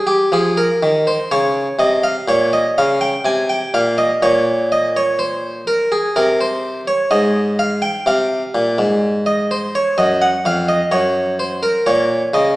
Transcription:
0.07 G4
0.32 F3 G#4
0.57 A#4
0.83 D#3
1.07 C5
1.31 C#3 C#5
1.79 C3 D#5
2.04 F5
2.28 A#2 C#5
2.53 D#5
2.78 C#3 F5
3.01 G5
3.25 C3 G#5
3.50 G5
3.74 A#2 F5
3.98 D#5
4.22 A#2 C#5
4.72 D#5
4.96 C#5
5.19 C5
5.67 A#4
5.92 G#4
6.16 C3 A#4
6.41 C5
6.88 C#5
7.11 G#2 D#5
7.59 F5
7.82 G5
8.06 C3 F5
8.55 A#2
8.78 G#2
9.26 D#5
9.51 C5
9.75 C#5
9.98 F#2 D#5
10.22 F#5
10.45 F2 F5
10.69 D#5
10.91 F#2 C#5
11.39 C5
11.63 A#4
11.86 A#2 C#5
12.34 C#3 D#5

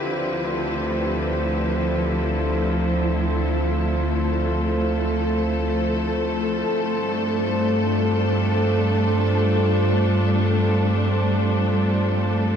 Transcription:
Already playing: D3 E4 G4 B4
0.00 D2 F3 C4
0.15 F3
0.42 A3
0.46 A4
6.68 G2
6.96 G3
7.02 D4

